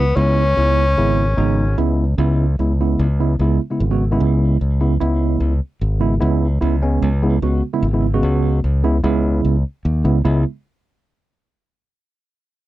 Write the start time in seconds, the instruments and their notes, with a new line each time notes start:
Already playing: fingered electric bass C#2, tenor saxophone B3
0.16 fingered electric bass C#2, tine electric piano C#3 G#3 B3 E4, tenor saxophone C#4
0.56 fingered electric bass C#2, tine electric piano C#3 G#3 B3 E4
0.97 fingered electric bass G#1, tine electric piano C#3 G#3 B3 E4
1.37 fingered electric bass G#1, tine electric piano C#3 G#3 B3 D#4
1.78 fingered electric bass C#2, tine electric piano C#3 G#3 B3 E4
2.18 fingered electric bass C#2, tine electric piano C#3 G#3 B3 E4
2.59 fingered electric bass C#2, tine electric piano C#3 G#3 B3 E4
2.80 tine electric piano C#3 G#3 B3 E4
2.99 fingered electric bass C#2
3.20 tine electric piano C#3 G#3 B3 E4
3.39 fingered electric bass C#2, tine electric piano C#3 G#3 B3 E4
3.71 tine electric piano C#3 G#3 B3 E4
3.80 fingered electric bass G#1
3.90 tine electric piano C#3 G#3 B3 F#4
4.11 tine electric piano C#3 G#3 B3 E4
4.20 fingered electric bass C#2
4.61 fingered electric bass C#2
4.81 tine electric piano C#3 G#3 B3 E4
5.00 fingered electric bass C#2, tine electric piano C#3 G#3 B3 E4
5.40 fingered electric bass C#2
5.81 fingered electric bass G#1
6.00 tine electric piano C#3 G#3 B3 E4
6.20 fingered electric bass C#2, tine electric piano C#3 G#3 B3 E4
6.61 fingered electric bass C#2, tine electric piano C#3 G#3 B3 E4
6.82 tine electric piano C#3 G#3 B3 C#4
7.02 fingered electric bass C#2
7.23 tine electric piano C#3 G#3 B3 E4
7.42 fingered electric bass C#2, tine electric piano C#3 G#3 B3 F#4
7.74 tine electric piano C#3 G#3 B3 E4
7.83 fingered electric bass G#1
7.93 tine electric piano C#3 G#3 B3 E4
8.14 tine electric piano C#3 G#3 B3 F#4
8.23 fingered electric bass C#2
8.64 fingered electric bass C#2
8.84 tine electric piano C#3 G#3 B3 E4
9.03 fingered electric bass C#2, tine electric piano C#3 G#3 B3 E4
9.45 fingered electric bass C#2
9.85 fingered electric bass D#2
10.04 fingered electric bass C#2, tine electric piano C#3 G#3 B3 E4
10.25 fingered electric bass C#2, tine electric piano C#3 G#3 B3 E4